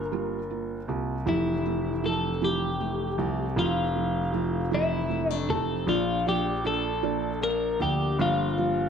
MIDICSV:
0, 0, Header, 1, 5, 480
1, 0, Start_track
1, 0, Key_signature, -1, "major"
1, 0, Tempo, 769231
1, 794, Time_signature, 6, 3, 24, 8
1, 5547, End_track
2, 0, Start_track
2, 0, Title_t, "Clean electric guitar"
2, 0, Program_c, 0, 27
2, 0, Note_on_c, 0, 70, 84
2, 525, Note_off_c, 0, 70, 0
2, 803, Note_on_c, 0, 64, 61
2, 1284, Note_on_c, 0, 69, 65
2, 1292, Note_off_c, 0, 64, 0
2, 1523, Note_off_c, 0, 69, 0
2, 1525, Note_on_c, 0, 67, 66
2, 2237, Note_off_c, 0, 67, 0
2, 2239, Note_on_c, 0, 65, 69
2, 2931, Note_off_c, 0, 65, 0
2, 2961, Note_on_c, 0, 64, 75
2, 3323, Note_off_c, 0, 64, 0
2, 3323, Note_on_c, 0, 62, 75
2, 3433, Note_on_c, 0, 69, 95
2, 3451, Note_off_c, 0, 62, 0
2, 3672, Note_off_c, 0, 69, 0
2, 3675, Note_on_c, 0, 65, 85
2, 3920, Note_off_c, 0, 65, 0
2, 3922, Note_on_c, 0, 67, 87
2, 4157, Note_off_c, 0, 67, 0
2, 4160, Note_on_c, 0, 69, 80
2, 4611, Note_off_c, 0, 69, 0
2, 4639, Note_on_c, 0, 70, 97
2, 4877, Note_off_c, 0, 70, 0
2, 4880, Note_on_c, 0, 67, 84
2, 5100, Note_off_c, 0, 67, 0
2, 5125, Note_on_c, 0, 65, 82
2, 5547, Note_off_c, 0, 65, 0
2, 5547, End_track
3, 0, Start_track
3, 0, Title_t, "Felt piano"
3, 0, Program_c, 1, 0
3, 73, Note_on_c, 1, 55, 86
3, 77, Note_on_c, 1, 58, 73
3, 80, Note_on_c, 1, 65, 94
3, 236, Note_off_c, 1, 55, 0
3, 238, Note_off_c, 1, 58, 0
3, 240, Note_off_c, 1, 65, 0
3, 311, Note_on_c, 1, 58, 55
3, 316, Note_on_c, 1, 65, 65
3, 475, Note_off_c, 1, 58, 0
3, 477, Note_off_c, 1, 65, 0
3, 549, Note_on_c, 1, 55, 58
3, 553, Note_on_c, 1, 58, 53
3, 555, Note_on_c, 1, 65, 69
3, 714, Note_off_c, 1, 55, 0
3, 716, Note_off_c, 1, 58, 0
3, 717, Note_off_c, 1, 65, 0
3, 787, Note_on_c, 1, 53, 78
3, 788, Note_on_c, 1, 57, 64
3, 791, Note_on_c, 1, 64, 76
3, 953, Note_off_c, 1, 53, 0
3, 953, Note_off_c, 1, 57, 0
3, 955, Note_off_c, 1, 64, 0
3, 1038, Note_on_c, 1, 53, 60
3, 1039, Note_on_c, 1, 57, 54
3, 1041, Note_on_c, 1, 64, 72
3, 1198, Note_off_c, 1, 53, 0
3, 1199, Note_off_c, 1, 57, 0
3, 1200, Note_off_c, 1, 64, 0
3, 1270, Note_on_c, 1, 53, 57
3, 1270, Note_on_c, 1, 57, 48
3, 1271, Note_on_c, 1, 64, 63
3, 1434, Note_off_c, 1, 53, 0
3, 1434, Note_off_c, 1, 57, 0
3, 1435, Note_off_c, 1, 64, 0
3, 1508, Note_on_c, 1, 57, 76
3, 1510, Note_on_c, 1, 53, 81
3, 1515, Note_on_c, 1, 64, 93
3, 1673, Note_off_c, 1, 57, 0
3, 1674, Note_off_c, 1, 53, 0
3, 1676, Note_off_c, 1, 64, 0
3, 1750, Note_on_c, 1, 57, 59
3, 1753, Note_on_c, 1, 64, 63
3, 1914, Note_off_c, 1, 57, 0
3, 1916, Note_off_c, 1, 64, 0
3, 1984, Note_on_c, 1, 53, 67
3, 1985, Note_on_c, 1, 57, 52
3, 1987, Note_on_c, 1, 64, 64
3, 2151, Note_off_c, 1, 53, 0
3, 2152, Note_off_c, 1, 57, 0
3, 2152, Note_off_c, 1, 64, 0
3, 2225, Note_on_c, 1, 53, 71
3, 2227, Note_on_c, 1, 64, 89
3, 2229, Note_on_c, 1, 57, 61
3, 2391, Note_off_c, 1, 53, 0
3, 2392, Note_off_c, 1, 64, 0
3, 2393, Note_off_c, 1, 57, 0
3, 2466, Note_on_c, 1, 57, 55
3, 2467, Note_on_c, 1, 53, 61
3, 2469, Note_on_c, 1, 64, 70
3, 2632, Note_off_c, 1, 53, 0
3, 2632, Note_off_c, 1, 57, 0
3, 2633, Note_off_c, 1, 64, 0
3, 2703, Note_on_c, 1, 53, 68
3, 2705, Note_on_c, 1, 57, 60
3, 2709, Note_on_c, 1, 64, 70
3, 2870, Note_off_c, 1, 53, 0
3, 2871, Note_off_c, 1, 57, 0
3, 2874, Note_off_c, 1, 64, 0
3, 2940, Note_on_c, 1, 53, 91
3, 2941, Note_on_c, 1, 57, 77
3, 2941, Note_on_c, 1, 64, 92
3, 3109, Note_off_c, 1, 53, 0
3, 3109, Note_off_c, 1, 57, 0
3, 3109, Note_off_c, 1, 64, 0
3, 3176, Note_on_c, 1, 53, 71
3, 3177, Note_on_c, 1, 57, 65
3, 3182, Note_on_c, 1, 64, 73
3, 3347, Note_off_c, 1, 53, 0
3, 3347, Note_off_c, 1, 57, 0
3, 3350, Note_off_c, 1, 64, 0
3, 3420, Note_on_c, 1, 53, 61
3, 3420, Note_on_c, 1, 57, 54
3, 3426, Note_on_c, 1, 64, 69
3, 3589, Note_off_c, 1, 53, 0
3, 3589, Note_off_c, 1, 57, 0
3, 3592, Note_off_c, 1, 64, 0
3, 3661, Note_on_c, 1, 53, 74
3, 3665, Note_on_c, 1, 58, 75
3, 3668, Note_on_c, 1, 62, 95
3, 3829, Note_off_c, 1, 53, 0
3, 3831, Note_off_c, 1, 58, 0
3, 3833, Note_off_c, 1, 62, 0
3, 3909, Note_on_c, 1, 53, 61
3, 3911, Note_on_c, 1, 58, 55
3, 3912, Note_on_c, 1, 62, 75
3, 4073, Note_off_c, 1, 53, 0
3, 4074, Note_off_c, 1, 58, 0
3, 4075, Note_off_c, 1, 62, 0
3, 4145, Note_on_c, 1, 53, 61
3, 4147, Note_on_c, 1, 58, 53
3, 4148, Note_on_c, 1, 62, 69
3, 4311, Note_off_c, 1, 53, 0
3, 4312, Note_off_c, 1, 58, 0
3, 4313, Note_off_c, 1, 62, 0
3, 4386, Note_on_c, 1, 53, 88
3, 4387, Note_on_c, 1, 58, 85
3, 4388, Note_on_c, 1, 62, 99
3, 4552, Note_off_c, 1, 53, 0
3, 4552, Note_off_c, 1, 58, 0
3, 4553, Note_off_c, 1, 62, 0
3, 4625, Note_on_c, 1, 58, 62
3, 4628, Note_on_c, 1, 62, 67
3, 4791, Note_off_c, 1, 58, 0
3, 4793, Note_off_c, 1, 62, 0
3, 4869, Note_on_c, 1, 53, 57
3, 4870, Note_on_c, 1, 58, 57
3, 4873, Note_on_c, 1, 62, 65
3, 5033, Note_off_c, 1, 53, 0
3, 5034, Note_off_c, 1, 58, 0
3, 5035, Note_off_c, 1, 62, 0
3, 5110, Note_on_c, 1, 55, 76
3, 5111, Note_on_c, 1, 58, 77
3, 5116, Note_on_c, 1, 65, 84
3, 5274, Note_off_c, 1, 55, 0
3, 5274, Note_off_c, 1, 58, 0
3, 5277, Note_off_c, 1, 65, 0
3, 5352, Note_on_c, 1, 58, 62
3, 5353, Note_on_c, 1, 55, 68
3, 5355, Note_on_c, 1, 65, 74
3, 5515, Note_off_c, 1, 55, 0
3, 5515, Note_off_c, 1, 58, 0
3, 5516, Note_off_c, 1, 65, 0
3, 5547, End_track
4, 0, Start_track
4, 0, Title_t, "Steel-string acoustic guitar"
4, 0, Program_c, 2, 25
4, 794, Note_on_c, 2, 52, 76
4, 1025, Note_off_c, 2, 52, 0
4, 1033, Note_on_c, 2, 52, 58
4, 1271, Note_on_c, 2, 60, 58
4, 1500, Note_off_c, 2, 52, 0
4, 1507, Note_on_c, 2, 52, 48
4, 1751, Note_on_c, 2, 57, 54
4, 1985, Note_off_c, 2, 60, 0
4, 1993, Note_on_c, 2, 60, 58
4, 2230, Note_off_c, 2, 52, 0
4, 2699, Note_off_c, 2, 60, 0
4, 2706, Note_on_c, 2, 60, 55
4, 2950, Note_on_c, 2, 52, 50
4, 3186, Note_off_c, 2, 57, 0
4, 3188, Note_on_c, 2, 55, 53
4, 3310, Note_off_c, 2, 55, 0
4, 3310, Note_on_c, 2, 57, 46
4, 3422, Note_off_c, 2, 60, 0
4, 3429, Note_on_c, 2, 60, 56
4, 3665, Note_off_c, 2, 52, 0
4, 3668, Note_on_c, 2, 53, 73
4, 3719, Note_off_c, 2, 57, 0
4, 3719, Note_off_c, 2, 60, 0
4, 3908, Note_off_c, 2, 53, 0
4, 3911, Note_on_c, 2, 53, 58
4, 4148, Note_on_c, 2, 62, 63
4, 4386, Note_off_c, 2, 53, 0
4, 4389, Note_on_c, 2, 53, 53
4, 4629, Note_on_c, 2, 58, 58
4, 4866, Note_off_c, 2, 62, 0
4, 4868, Note_on_c, 2, 62, 63
4, 5109, Note_off_c, 2, 53, 0
4, 5112, Note_on_c, 2, 53, 77
4, 5350, Note_off_c, 2, 53, 0
4, 5352, Note_on_c, 2, 53, 54
4, 5547, Note_off_c, 2, 53, 0
4, 5547, Note_off_c, 2, 58, 0
4, 5547, Note_off_c, 2, 62, 0
4, 5547, End_track
5, 0, Start_track
5, 0, Title_t, "Grand piano"
5, 0, Program_c, 3, 0
5, 0, Note_on_c, 3, 31, 77
5, 528, Note_off_c, 3, 31, 0
5, 551, Note_on_c, 3, 36, 65
5, 778, Note_off_c, 3, 36, 0
5, 786, Note_on_c, 3, 29, 81
5, 1985, Note_on_c, 3, 36, 68
5, 1989, Note_off_c, 3, 29, 0
5, 2214, Note_off_c, 3, 36, 0
5, 2223, Note_on_c, 3, 29, 91
5, 3403, Note_off_c, 3, 29, 0
5, 3427, Note_on_c, 3, 29, 64
5, 3656, Note_off_c, 3, 29, 0
5, 3662, Note_on_c, 3, 34, 83
5, 4842, Note_off_c, 3, 34, 0
5, 4866, Note_on_c, 3, 38, 73
5, 5095, Note_off_c, 3, 38, 0
5, 5108, Note_on_c, 3, 31, 94
5, 5547, Note_off_c, 3, 31, 0
5, 5547, End_track
0, 0, End_of_file